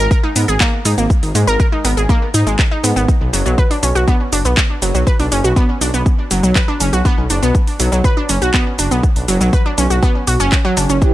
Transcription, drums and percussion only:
0.11 kick, shaker
0.36 open hi-hat, shaker
0.48 shaker
0.60 kick, clap, shaker
0.85 open hi-hat, shaker
0.98 shaker
1.10 kick, shaker
1.23 open hi-hat
1.35 open hi-hat, shaker
1.48 shaker
1.60 kick, shaker
1.85 open hi-hat, shaker
1.97 shaker
2.09 kick, shaker
2.34 open hi-hat, shaker
2.47 shaker
2.59 kick, clap, shaker
2.84 open hi-hat, shaker
2.97 shaker
3.08 kick, shaker
3.34 open hi-hat, shaker
3.46 shaker
3.58 kick, shaker
3.71 open hi-hat
3.83 open hi-hat, shaker
3.96 shaker
4.08 kick, shaker
4.33 open hi-hat, shaker
4.45 shaker
4.57 kick, clap, shaker
4.82 open hi-hat, shaker
4.95 shaker
5.07 kick, shaker
5.20 open hi-hat
5.32 open hi-hat, shaker
5.44 shaker
5.56 kick, shaker
5.81 open hi-hat, shaker
5.94 shaker
6.06 kick, shaker
6.31 open hi-hat, shaker
6.44 shaker
6.56 kick, clap, shaker
6.80 open hi-hat, shaker
6.93 shaker
7.05 kick, shaker
7.30 open hi-hat, shaker
7.43 shaker
7.55 kick, shaker
7.67 open hi-hat
7.80 open hi-hat, shaker
7.92 shaker
8.04 kick, shaker
8.29 open hi-hat, shaker
8.42 shaker
8.54 kick, clap, shaker
8.79 open hi-hat, shaker
8.91 shaker
9.03 kick, shaker
9.16 open hi-hat
9.28 open hi-hat, shaker
9.41 shaker
9.53 kick, shaker
9.78 open hi-hat, shaker
9.91 shaker
10.03 kick, shaker
10.27 open hi-hat, shaker
10.40 shaker
10.52 kick, clap, shaker
10.77 open hi-hat, shaker
10.90 shaker
11.02 kick, shaker

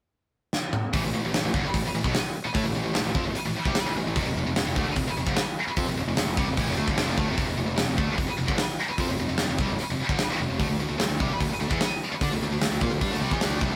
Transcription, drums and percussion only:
0.53 snare
0.73 mid tom
0.94 kick, open hi-hat
1.34 snare, open hi-hat
1.54 kick
1.74 kick, open hi-hat
2.04 kick
2.15 snare, open hi-hat
2.55 kick, open hi-hat
2.95 snare, open hi-hat
3.15 kick
3.35 open hi-hat
3.65 kick
3.75 snare, open hi-hat
4.16 kick, open hi-hat
4.56 snare, open hi-hat
4.76 kick
4.96 kick, open hi-hat
5.27 kick
5.37 snare, open hi-hat
5.76 kick, open hi-hat
6.17 snare, open hi-hat
6.37 kick
6.57 kick, open hi-hat
6.88 kick
6.98 snare, open hi-hat
7.18 kick
7.38 kick, open hi-hat
7.78 snare, open hi-hat
7.98 kick
8.18 kick, open hi-hat
8.48 kick
8.58 snare, open hi-hat
8.98 kick, open hi-hat
9.38 snare, open hi-hat
9.59 kick
9.79 open hi-hat
10.09 kick
10.19 snare, open hi-hat
10.60 kick, open hi-hat
11.00 snare, open hi-hat
11.20 kick
11.40 kick, open hi-hat
11.71 kick
11.81 snare, open hi-hat
12.21 kick, open hi-hat
12.61 snare, open hi-hat
12.81 kick
13.01 kick, open hi-hat
13.31 kick
13.41 snare, open hi-hat
13.61 kick

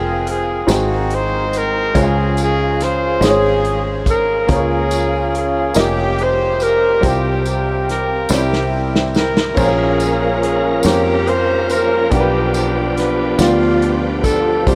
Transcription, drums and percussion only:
0.27 closed hi-hat
0.68 snare, closed hi-hat, tambourine
1.10 closed hi-hat
1.53 closed hi-hat, tambourine
1.95 kick, closed hi-hat, tambourine
2.37 closed hi-hat, tambourine
2.80 snare, closed hi-hat
3.22 snare, closed hi-hat, tambourine
3.65 closed hi-hat
4.06 kick, closed hi-hat, tambourine
4.48 kick, closed hi-hat, tambourine
4.91 closed hi-hat, tambourine
5.35 closed hi-hat
5.74 snare, closed hi-hat, tambourine
6.18 closed hi-hat
6.60 closed hi-hat, tambourine
7.03 kick, closed hi-hat, tambourine
7.45 closed hi-hat, tambourine
7.89 snare, closed hi-hat
8.29 snare, tambourine
8.53 snare
8.96 snare
9.14 snare, tambourine
9.37 snare
9.57 kick, crash, tambourine
10.00 closed hi-hat, tambourine
10.43 closed hi-hat
10.83 snare, closed hi-hat, tambourine
11.27 closed hi-hat
11.70 closed hi-hat, tambourine
12.11 kick, closed hi-hat, tambourine
12.54 closed hi-hat, tambourine
12.97 snare, closed hi-hat
13.39 snare, closed hi-hat, tambourine
13.82 closed hi-hat
14.24 kick, closed hi-hat, tambourine
14.67 kick, closed hi-hat, tambourine

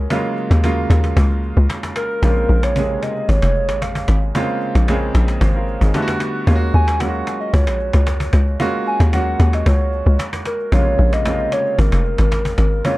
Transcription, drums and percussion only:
0.10 cajon bass
0.37 cajon slap
0.51 cajon slap
0.64 cajon bass, cajon slap
0.90 cajon slap
1.04 cajon slap
1.17 cajon bass
1.30 cajon slap
1.43 cajon slap
1.57 cajon slap
1.70 cajon bass, cajon slap
1.83 cajon bass, cajon slap
1.96 cajon slap
2.10 cajon slap
2.23 cajon bass
2.49 cajon slap
2.63 cajon slap
2.76 cajon bass, cajon slap
2.90 cajon slap
3.03 cajon slap
3.16 cajon slap
3.29 cajon bass
3.42 cajon slap
3.55 cajon slap
3.69 cajon slap
3.82 cajon bass, cajon slap
3.95 cajon bass
4.08 cajon slap
4.22 cajon slap
4.35 cajon bass
4.49 cajon slap
4.61 cajon slap
4.75 cajon slap
4.88 cajon bass, cajon slap
5.02 cajon slap
5.15 cajon slap
5.28 cajon slap
5.41 cajon bass
5.54 cajon slap
5.67 cajon slap
5.81 cajon bass
5.94 cajon bass, cajon slap
6.08 cajon bass, cajon slap
6.20 cajon slap
6.35 cajon slap
6.47 cajon bass
6.61 cajon slap
6.73 cajon slap
6.88 cajon slap
7.00 cajon bass, cajon slap
7.14 cajon slap
7.27 cajon slap
7.41 cajon slap
7.54 cajon bass
7.67 cajon slap
7.80 cajon slap
7.93 cajon slap
8.07 cajon bass, cajon slap
8.20 cajon bass
8.33 cajon slap
8.47 cajon slap
8.60 cajon bass
8.86 cajon slap
9.00 cajon slap
9.13 cajon bass, cajon slap
9.27 cajon slap
9.40 cajon slap
9.53 cajon slap
9.66 cajon bass
9.80 cajon slap
9.93 cajon slap
10.06 cajon slap
10.19 cajon bass, cajon slap
10.33 cajon bass, cajon slap
10.45 cajon slap
10.60 cajon slap
10.72 cajon bass
10.86 cajon slap
10.99 cajon slap
11.13 cajon slap
11.25 cajon bass, cajon slap
11.40 cajon slap
11.52 cajon slap
11.66 cajon slap
11.79 cajon bass
11.92 cajon slap
12.18 cajon slap
12.31 cajon bass, cajon slap
12.45 cajon bass
12.58 cajon slap
12.72 cajon slap
12.85 cajon bass

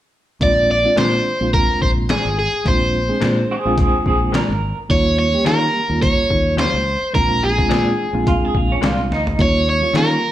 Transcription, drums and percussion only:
0.41 kick, closed hi-hat
0.97 snare, closed hi-hat
1.54 kick, closed hi-hat
1.81 kick
2.09 snare, closed hi-hat
2.66 kick, closed hi-hat
3.22 snare, closed hi-hat
3.78 kick, closed hi-hat
4.06 kick
4.34 snare, closed hi-hat
4.90 kick, closed hi-hat
5.46 snare, closed hi-hat
6.02 kick, closed hi-hat
6.31 kick
6.58 snare, closed hi-hat
7.15 kick, closed hi-hat
7.58 kick
7.71 snare, closed hi-hat
8.27 kick, closed hi-hat
8.55 kick
8.83 snare, closed hi-hat
9.12 snare
9.27 floor tom
9.39 kick, closed hi-hat
9.95 snare, closed hi-hat

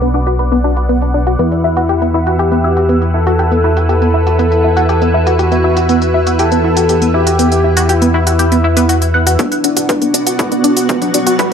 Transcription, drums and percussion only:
0.02 closed hi-hat
0.27 closed hi-hat
0.39 closed hi-hat
0.52 closed hi-hat
0.77 closed hi-hat
0.89 closed hi-hat
1.02 closed hi-hat
1.27 closed hi-hat
1.39 closed hi-hat
1.52 closed hi-hat
1.77 closed hi-hat
1.89 closed hi-hat
2.02 closed hi-hat
2.27 closed hi-hat
2.39 closed hi-hat
2.52 closed hi-hat
2.77 closed hi-hat
2.89 closed hi-hat
3.02 closed hi-hat
3.27 closed hi-hat
3.39 closed hi-hat
3.52 closed hi-hat
3.77 closed hi-hat
3.89 closed hi-hat
4.02 closed hi-hat
4.27 closed hi-hat
4.39 closed hi-hat
4.52 closed hi-hat
4.77 closed hi-hat
4.89 closed hi-hat
5.02 closed hi-hat
5.27 closed hi-hat
5.39 closed hi-hat
5.52 closed hi-hat
5.77 closed hi-hat
5.89 closed hi-hat
6.02 closed hi-hat
6.27 closed hi-hat
6.39 closed hi-hat
6.52 closed hi-hat
6.77 closed hi-hat
6.89 closed hi-hat
7.02 closed hi-hat
7.27 closed hi-hat
7.39 closed hi-hat
7.52 closed hi-hat
7.77 closed hi-hat
7.89 closed hi-hat
8.02 closed hi-hat
8.27 closed hi-hat
8.39 closed hi-hat
8.52 closed hi-hat
8.77 closed hi-hat
8.89 closed hi-hat
9.02 closed hi-hat
9.27 closed hi-hat
9.39 kick, closed hi-hat
9.52 closed hi-hat
9.64 closed hi-hat
9.77 closed hi-hat, mid tom
9.89 kick, closed hi-hat
10.02 closed hi-hat
10.14 closed hi-hat
10.27 closed hi-hat
10.39 kick, closed hi-hat, mid tom
10.52 closed hi-hat
10.64 closed hi-hat
10.77 closed hi-hat
10.89 kick, closed hi-hat
11.02 closed hi-hat, mid tom
11.14 closed hi-hat
11.27 closed hi-hat
11.39 kick, closed hi-hat

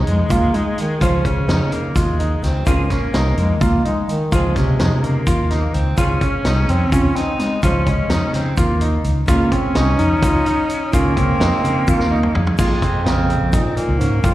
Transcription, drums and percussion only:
0.07 closed hi-hat
0.30 kick, closed hi-hat, shaker
0.54 closed hi-hat
0.78 closed hi-hat, shaker
1.01 kick, closed hi-hat, shaker
1.25 kick, closed hi-hat, shaker
1.49 snare, closed hi-hat, shaker
1.72 closed hi-hat
1.96 kick, snare, closed hi-hat, shaker
2.20 closed hi-hat
2.43 snare, closed hi-hat, shaker
2.67 kick, closed hi-hat, shaker
2.90 kick, snare, closed hi-hat, shaker
3.14 snare, closed hi-hat, shaker
3.37 closed hi-hat
3.61 kick, closed hi-hat, shaker
3.85 closed hi-hat
4.09 closed hi-hat, shaker
4.32 kick, closed hi-hat, shaker
4.56 kick, snare, closed hi-hat, shaker
4.79 snare, closed hi-hat, shaker
5.04 closed hi-hat
5.27 kick, closed hi-hat, shaker
5.50 snare, closed hi-hat
5.74 closed hi-hat
5.97 kick, closed hi-hat, shaker
6.21 kick, closed hi-hat, shaker
6.45 snare, closed hi-hat, shaker
6.69 closed hi-hat
6.92 kick, closed hi-hat, shaker
7.16 snare, closed hi-hat
7.39 snare, closed hi-hat, shaker
7.63 kick, closed hi-hat, shaker
7.87 kick, closed hi-hat, shaker
8.10 snare, closed hi-hat, shaker
8.34 snare, closed hi-hat
8.57 kick, closed hi-hat, shaker
8.81 closed hi-hat
9.04 closed hi-hat, shaker
9.28 kick, closed hi-hat, shaker
9.52 kick, closed hi-hat, shaker
9.75 snare, closed hi-hat, shaker
9.99 closed hi-hat
10.22 kick, closed hi-hat, shaker
10.46 closed hi-hat
10.69 closed hi-hat, shaker
10.93 kick, closed hi-hat, shaker
11.17 kick, closed hi-hat
11.41 snare, closed hi-hat
11.65 closed hi-hat, shaker
11.88 kick, shaker
12.00 snare
12.23 mid tom
12.35 floor tom
12.47 floor tom
12.58 kick, crash, shaker
12.82 kick, closed hi-hat
13.06 snare, closed hi-hat
13.30 closed hi-hat
13.53 kick, closed hi-hat, shaker
13.77 closed hi-hat, shaker
14.00 closed hi-hat, shaker
14.24 kick, closed hi-hat, shaker

